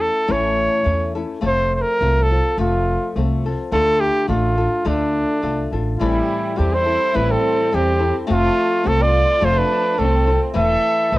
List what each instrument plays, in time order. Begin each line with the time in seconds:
Already playing: nylon-string guitar A3 C#4 E4 A4
0.01 trumpet A4
0.28 upright bass A1, nylon-string guitar A2 E3 A3 C#4 E4 A4, trumpet C#5
0.84 upright bass E2, nylon-string guitar A3 C#4 E4 A4
1.15 nylon-string guitar A3 C#4 E4 A4
1.41 upright bass F1, nylon-string guitar F3 A3 C4 F4 A4
1.46 trumpet C5
1.75 trumpet C5
1.82 trumpet A#4
2.01 upright bass C2, nylon-string guitar A3 C4 F4 A4
2.23 trumpet A4
2.30 nylon-string guitar C4 F4 A4
2.58 upright bass F1, nylon-string guitar F3 A3 C4 F4 A4, trumpet F4
3.16 upright bass C2, nylon-string guitar A3 C4 F4 A4
3.46 nylon-string guitar C4 F4 A4
3.72 upright bass D2, nylon-string guitar D3 A3 D4 F4 A4, trumpet A4
4.00 trumpet G4
4.27 upright bass A1, nylon-string guitar A3 D4 F4 A4, trumpet F4
4.58 nylon-string guitar D4 F4 A4
4.85 upright bass D2, nylon-string guitar D3 A3 D4 F4 A4, trumpet D4
5.42 upright bass C2, nylon-string guitar A3 D4 F4 A4
5.72 upright bass A1, nylon-string guitar D4 F4 A4
5.99 upright bass A1, nylon-string guitar A2 E3 G3 C4 E4 A4, violin section G3, trumpet E4
6.56 upright bass E2, nylon-string guitar G3 C4 E4 A4, violin section C4, trumpet G4
6.73 violin section E4, trumpet C5
6.85 nylon-string guitar G3 C4 E4 A4
7.13 upright bass A1, nylon-string guitar A2 E3 G3 C4 E4 A4, violin section E4, trumpet B4
7.29 violin section C4, trumpet A4
7.71 upright bass E2, nylon-string guitar G3 C4 E4 A4, violin section C4, trumpet G4
7.99 nylon-string guitar G3 C4 E4 A4
8.27 upright bass F1, nylon-string guitar F3 A3 C4 F4 A4
8.32 violin section A3, trumpet F4
8.83 upright bass C2, nylon-string guitar A3 C4 F4 A4, trumpet A4
8.90 violin section C4
9.02 violin section F4, trumpet D5
9.41 upright bass F1, nylon-string guitar F3 A3 C4 F4 A4, trumpet C5
9.45 violin section F4
9.58 violin section D4, trumpet B4
9.98 upright bass C2, nylon-string guitar A3 C4 F4 A4, trumpet A4
10.03 violin section C4
10.27 nylon-string guitar C4 F4 A4
10.54 upright bass E1, nylon-string guitar E3 A3 E4 A4 B4, trumpet E5
10.58 violin section A4
11.12 upright bass B1, nylon-string guitar A3 E4 A4 B4